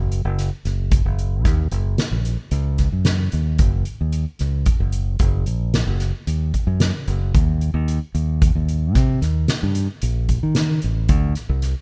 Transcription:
Already playing: fingered electric bass F#1
0.12 closed hi-hat
0.25 fingered electric bass F#1
0.39 snare, closed hi-hat
0.65 fingered electric bass F#1, snare, closed hi-hat
0.91 kick, closed hi-hat
1.05 fingered electric bass F#1
1.19 closed hi-hat
1.45 fingered electric bass D#2, kick, snare, closed hi-hat
1.71 fingered electric bass F#1, closed hi-hat
1.98 snare, closed hi-hat
2.11 fingered electric bass A#1
2.25 closed hi-hat
2.51 fingered electric bass C#2, closed hi-hat
2.78 kick, snare, closed hi-hat
2.92 fingered electric bass F#2
3.05 snare, closed hi-hat
3.32 fingered electric bass D#2, closed hi-hat
3.58 fingered electric bass F#1, kick, closed hi-hat
3.85 closed hi-hat
4.01 fingered electric bass D#2
4.12 closed hi-hat
4.39 fingered electric bass C#2, snare, closed hi-hat
4.66 kick, closed hi-hat
4.80 fingered electric bass F#1
4.92 closed hi-hat
5.19 fingered electric bass F#1, kick, closed hi-hat
5.46 fingered electric bass A#1, closed hi-hat
5.74 snare, closed hi-hat
5.87 fingered electric bass F#1
6.00 snare, closed hi-hat
6.27 fingered electric bass D#2, closed hi-hat
6.54 kick, closed hi-hat
6.67 fingered electric bass F#2
6.80 snare, closed hi-hat
7.08 fingered electric bass F#1, closed hi-hat
7.35 fingered electric bass D#2, kick, closed hi-hat
7.61 closed hi-hat
7.74 fingered electric bass D#2
7.88 closed hi-hat
8.15 fingered electric bass D#2, closed hi-hat
8.42 kick, closed hi-hat
8.55 fingered electric bass D#2
8.69 closed hi-hat
8.95 fingered electric bass C3, kick, snare, closed hi-hat
9.22 fingered electric bass D#2, snare, closed hi-hat
9.48 snare, closed hi-hat
9.63 fingered electric bass G2
9.75 closed hi-hat
10.02 fingered electric bass A#1, closed hi-hat
10.29 kick, closed hi-hat
10.43 fingered electric bass D#3
10.55 snare, closed hi-hat
10.82 fingered electric bass A1, closed hi-hat
11.09 fingered electric bass D2, kick, closed hi-hat
11.35 snare, closed hi-hat
11.49 fingered electric bass C2
11.62 snare, closed hi-hat

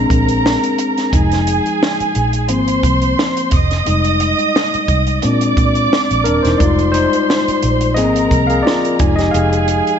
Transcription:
Already playing: tine electric piano G#3 C4 D4 G#4, violin section A#4 A#5
0.10 fingered electric bass A#1, kick, closed hi-hat
0.28 closed hi-hat
0.46 snare
0.64 closed hi-hat
0.78 closed hi-hat
0.98 snare, closed hi-hat
1.12 fingered electric bass F1, tine electric piano F3 G#3 D#4, violin section G#4 G#5, kick, closed hi-hat
1.32 snare, closed hi-hat
1.47 closed hi-hat
1.66 closed hi-hat
1.83 snare
2.00 muted fingered electric bass stroke, closed hi-hat
2.15 fingered electric bass A#1, closed hi-hat
2.33 closed hi-hat
2.49 fingered electric bass G#1, tine electric piano F3 A#3 C4, violin section C5 C6, closed hi-hat
2.68 closed hi-hat
2.83 fingered electric bass C2, kick, closed hi-hat
3.02 closed hi-hat
3.19 snare
3.37 closed hi-hat
3.51 fingered electric bass F1, violin section D#5 D#6, kick, closed hi-hat
3.71 snare, closed hi-hat
3.86 fingered electric bass F1, tine electric piano G3 G#3 D#4, closed hi-hat
4.04 closed hi-hat
4.20 closed hi-hat
4.39 closed hi-hat
4.56 snare
4.74 muted fingered electric bass stroke, closed hi-hat
4.88 fingered electric bass C2, kick, closed hi-hat
5.07 closed hi-hat
5.22 fingered electric bass A#2, tine electric piano G#3 C4 D4, violin section D5 D6, closed hi-hat
5.41 closed hi-hat
5.57 fingered electric bass A#2, kick, closed hi-hat
5.75 closed hi-hat
5.93 snare
6.11 fingered electric bass A#1, closed hi-hat
6.24 fingered electric bass D#1, tine electric piano D4 A#4, closed hi-hat
6.43 fingered electric bass E1, tine electric piano D#4 C5, snare, closed hi-hat
6.58 fingered electric bass F1, tine electric piano G3 G#3 D#4 F4 D5, violin section C5 C6, kick, closed hi-hat
6.79 closed hi-hat
6.92 tine electric piano D#4 C5, closed hi-hat
7.13 closed hi-hat
7.30 snare
7.48 muted fingered electric bass stroke, closed hi-hat
7.62 fingered electric bass A#1, closed hi-hat
7.81 closed hi-hat
7.94 fingered electric bass G#1, tine electric piano F3 A#3 C4 G#4 D#5, violin section A#4 A#5, closed hi-hat
8.16 closed hi-hat
8.31 fingered electric bass C2, kick, closed hi-hat
8.47 tine electric piano G#4 F5, closed hi-hat
8.63 tine electric piano F4 D5
8.67 snare
8.85 closed hi-hat
8.99 fingered electric bass F1, tine electric piano F3 G#3 D#4, violin section G#4 G#5, kick, closed hi-hat
9.16 tine electric piano G4 D#5, snare, closed hi-hat
9.31 fingered electric bass F1, tine electric piano G#4 F5, closed hi-hat
9.53 closed hi-hat
9.68 closed hi-hat
9.87 closed hi-hat

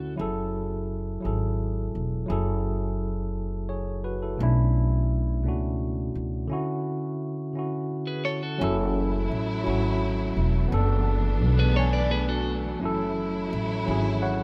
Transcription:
Already playing: upright bass D2, tine electric piano D3 C#4 E4 F#4, clean electric guitar F#4 A4
0.16 upright bass F#1, tine electric piano F#3 E4 G#4
0.21 tine electric piano A4
1.20 tine electric piano F#3 E4 G#4
1.25 upright bass G#1, tine electric piano A4
1.95 upright bass E1
2.26 upright bass F#1, tine electric piano F#3 E4 G#4
2.32 tine electric piano A4
3.69 tine electric piano G#4 C#5
4.04 tine electric piano F#4 B4
4.23 tine electric piano E4 A4
4.38 upright bass B1, tine electric piano B2 A3 C#4
4.42 tine electric piano D4 E4
5.43 upright bass C#2, tine electric piano B2 A3 C#4 D4
5.48 tine electric piano F#4
6.15 upright bass C#2
6.47 tine electric piano D3 C#4 E4
6.53 tine electric piano F#4
7.53 tine electric piano D3 C#4 E4
7.59 tine electric piano F#4
8.07 clean electric guitar G#4 B4
8.25 clean electric guitar A4 C#5
8.43 clean electric guitar F#4 A4
8.58 upright bass F#1, string section E3 F#3 A3 E4, tine electric piano F#3 C#4 E4
8.64 tine electric piano A4
9.31 upright bass A1
9.64 upright bass G#1, tine electric piano F#3 C#4 E4
9.70 tine electric piano F#4
10.37 upright bass E1
10.68 upright bass F#1, tine electric piano B3 C#4, string section B3 D4
10.74 tine electric piano D4 A4
11.42 upright bass B1
11.59 clean electric guitar G#4 B4
11.74 tine electric piano B3 D4, clean electric guitar A4 C#5
11.79 tine electric piano G#5
11.93 clean electric guitar B4 D5
12.11 clean electric guitar G#4 B4
12.29 clean electric guitar F#4 A4
12.80 upright bass F#1, string section E3 F#3 E4, tine electric piano F#3 C#4 E4
12.85 tine electric piano A4
13.53 upright bass A1
13.85 upright bass G#1, tine electric piano F#3 C#4 E4
13.91 tine electric piano G#4
14.22 tine electric piano C#5 F#5

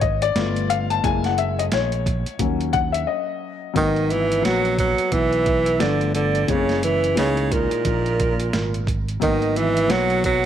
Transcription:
Already playing: fretless electric bass G#1
0.01 upright piano D#5, kick, closed hi-hat
0.22 upright piano D5, closed hi-hat
0.35 fretless electric bass G1, upright piano A3 B3 F4, snare, closed hi-hat
0.56 closed hi-hat
0.70 upright piano F5, closed hi-hat
0.90 upright piano A5, closed hi-hat
1.03 fretless electric bass F#1, upright piano G#3 A#3 E4 G#5, kick, closed hi-hat
1.24 upright piano F#5, snare, closed hi-hat
1.38 upright piano E5, closed hi-hat
1.59 upright piano D#5, closed hi-hat
1.72 fretless electric bass A#1, upright piano C#5, snare, closed hi-hat
1.92 closed hi-hat
2.06 kick, closed hi-hat
2.26 muted fretless electric bass stroke, closed hi-hat
2.39 fretless electric bass D#2, upright piano F#3 A#3 C#4, kick, closed hi-hat
2.61 closed hi-hat
2.73 upright piano F#5, kick, closed hi-hat
2.92 upright piano E5, closed hi-hat
3.07 upright piano D#5
3.73 fretless electric bass G#1, tenor saxophone D#3, upright piano F#3 A#3 B3 D#4, flute D#5, kick, closed hi-hat
3.96 closed hi-hat
4.09 tenor saxophone E3, flute E5, closed hi-hat
4.32 closed hi-hat
4.42 fretless electric bass A#1, upright piano F#3 A#3 B3, tenor saxophone F#3, flute F#5, snare, closed hi-hat
4.46 upright piano F#4
4.65 closed hi-hat
4.78 tenor saxophone F#3, flute F#5, kick, closed hi-hat
4.98 closed hi-hat
5.12 fretless electric bass B1, tenor saxophone E3, flute E5, kick, closed hi-hat
5.33 closed hi-hat
5.46 kick, closed hi-hat
5.66 closed hi-hat
5.79 fretless electric bass G1, tenor saxophone D3, upright piano F3 A3 B3 D4, flute D5, snare, closed hi-hat
6.01 closed hi-hat
6.15 tenor saxophone D3, flute D5, closed hi-hat
6.35 closed hi-hat
6.47 fretless electric bass F#1, upright piano E3 G#3 A#3 C4, flute C#5, kick, closed hi-hat
6.51 tenor saxophone C#3
6.57 upright piano C#4
6.69 snare, closed hi-hat
6.83 tenor saxophone E3, flute E5, closed hi-hat
7.04 closed hi-hat
7.15 fretless electric bass C#2, tenor saxophone C#3, upright piano E3 G#3 A#3 D#4, flute C#5, snare, closed hi-hat
7.37 closed hi-hat
7.51 tenor saxophone A#2, flute A#4, kick, closed hi-hat
7.71 muted fretless electric bass stroke, closed hi-hat
7.85 fretless electric bass A#1, kick, closed hi-hat
8.06 closed hi-hat
8.20 kick, closed hi-hat
8.40 closed hi-hat
8.53 fretless electric bass G#1, snare, closed hi-hat
8.74 closed hi-hat
8.87 kick, closed hi-hat
9.08 closed hi-hat
9.20 fretless electric bass G#1, tenor saxophone D#3, upright piano F#3 A#3 B3 D#4, flute D#5, kick, closed hi-hat
9.42 closed hi-hat
9.56 tenor saxophone E3, flute E5, closed hi-hat
9.77 closed hi-hat
9.88 fretless electric bass B1, upright piano F#3 A#3 B3 F#4, flute F#5, snare, closed hi-hat
9.92 tenor saxophone F#3
10.10 closed hi-hat
10.24 tenor saxophone F#3, flute F#5, kick, closed hi-hat

